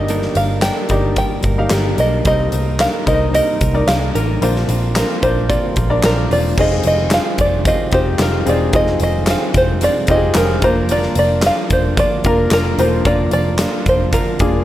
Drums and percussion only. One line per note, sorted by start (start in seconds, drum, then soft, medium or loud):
0.08 closed hi-hat medium
0.22 snare soft
0.35 closed hi-hat medium
0.62 snare loud
0.62 clap medium
0.62 closed hi-hat medium
0.89 kick medium
0.89 closed hi-hat medium
1.16 kick medium
1.16 closed hi-hat medium
1.43 kick medium
1.43 closed hi-hat medium
1.70 snare loud
1.70 clap medium
1.70 closed hi-hat medium
1.98 closed hi-hat medium
2.25 kick loud
2.25 closed hi-hat medium
2.52 closed hi-hat medium
2.80 snare medium
2.80 clap medium
2.80 closed hi-hat medium
3.07 kick medium
3.07 closed hi-hat medium
3.35 closed hi-hat medium
3.61 kick medium
3.61 closed hi-hat medium
3.88 snare loud
3.88 clap medium
3.88 closed hi-hat medium
4.16 closed hi-hat medium
4.42 closed hi-hat medium
4.56 snare soft
4.69 closed hi-hat medium
4.96 snare loud
4.96 clap medium
4.96 closed hi-hat loud
5.23 kick medium
5.23 closed hi-hat medium
5.50 kick loud
5.50 closed hi-hat medium
5.76 kick medium
5.76 closed hi-hat medium
6.03 snare loud
6.03 clap medium
6.03 closed hi-hat medium
6.31 open hi-hat medium
6.58 kick loud
6.58 crash loud
6.71 snare soft
6.84 closed hi-hat medium
7.11 snare loud
7.11 clap medium
7.11 closed hi-hat loud
7.38 kick medium
7.38 closed hi-hat medium
7.65 kick loud
7.65 closed hi-hat medium
7.92 kick loud
7.92 closed hi-hat medium
8.19 snare loud
8.19 clap medium
8.19 closed hi-hat loud
8.47 closed hi-hat medium
8.73 kick loud
8.73 closed hi-hat medium
8.87 snare soft
9.00 closed hi-hat medium
9.27 snare loud
9.27 clap medium
9.27 closed hi-hat loud
9.54 kick medium
9.54 closed hi-hat medium
9.81 closed hi-hat medium
10.07 kick medium
10.07 closed hi-hat medium
10.34 snare loud
10.34 clap medium
10.34 closed hi-hat loud
10.62 kick loud
10.62 closed hi-hat medium
10.89 closed hi-hat medium
11.03 snare soft
11.15 closed hi-hat medium
11.42 snare loud
11.42 clap medium
11.42 closed hi-hat loud
11.70 kick medium
11.70 closed hi-hat medium
11.97 kick loud
11.97 closed hi-hat medium
12.24 kick medium
12.24 closed hi-hat medium
12.51 snare loud
12.51 clap medium
12.51 closed hi-hat loud
12.79 closed hi-hat medium
13.05 kick loud
13.05 closed hi-hat medium
13.31 closed hi-hat medium
13.58 snare loud
13.58 clap medium
13.58 closed hi-hat loud
13.86 kick medium
13.86 closed hi-hat medium
14.13 kick medium
14.13 closed hi-hat medium
14.39 kick medium
14.39 closed hi-hat medium